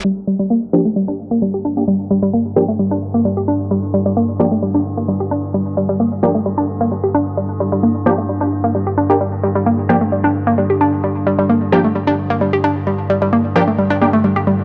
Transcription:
X:1
M:4/4
L:1/16
Q:1/4=131
K:Gm
V:1 name="Synth stab"
z6 [B,DG] z8 [B,DG] | z6 [B,DG] z8 z | z6 [B,DG] z8 z | z6 [B,DG] z8 z |
z6 [B,DG] z8 [B,DG] | z6 [B,DG] z8 z | z6 [B,DG] z8 z | z6 [B,DG] z3 [B,DG] z4 z |]
V:2 name="Synth arpeggio sound" clef=bass
G, z G, G, B, z F, A, G, D z B, G, G D z | G, z G, G, B, z F, A, G, D z B, G, G D z | G, z G, G, B, z F, A, G, D z B, G, G D z | G, z G, G, B, z F, A, G, D z B, G, G D z |
G, z G, G, B, z F, A, G, D z B, G, G D z | G, z G, G, B, z F, A, G, D z B, G, G D z | G, z G, G, B, z F, A, G, D z B, G, G D z | G, z G, G, B, z F, A, G, D z A, G, G G, z |]
V:3 name="Synth drone" clef=bass
[G,,D,]16- | [G,,D,]16- | [G,,D,]16- | [G,,D,]16- |
[G,,D,]16- | [G,,D,]16- | [G,,D,]16- | [G,,D,]16 |]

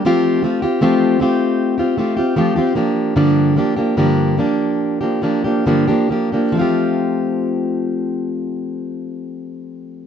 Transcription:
X:1
M:4/4
L:1/16
Q:1/4=71
K:F
V:1 name="Steel-string acoustic guitar"
[F,A,CFG]2 [A,CFG] [CFG] [F,A,CFG]2 [A,CFG]3 [CFG] [A,CFG] [CFG] [F,A,CFG] [CFG] [F,B,DG]2 | [G,,D,F,B,DG]2 [F,B,DG] [F,B,DG] [G,,D,F,B,DG]2 [F,B,DG]3 [F,B,DG] [F,B,DG] [F,B,DG] [G,,D,F,B,DG] [F,B,DG] [F,B,DG] [F,B,DG] | [F,A,CFG]16 |]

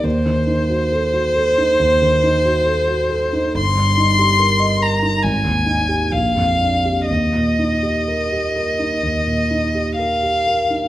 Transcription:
X:1
M:4/4
L:1/16
Q:1/4=67
K:Eb
V:1 name="Violin"
c16 | c'6 b2 a4 f4 | e12 f4 |]
V:2 name="Grand piano"
E,, E, E _G =A G A E E,, E, E G A G A E | G,,, G,, E G B e B E A,,, E,, E G B,,, F,, D G | E,, B,, E G B G B E E,, B,, E G B G B E |]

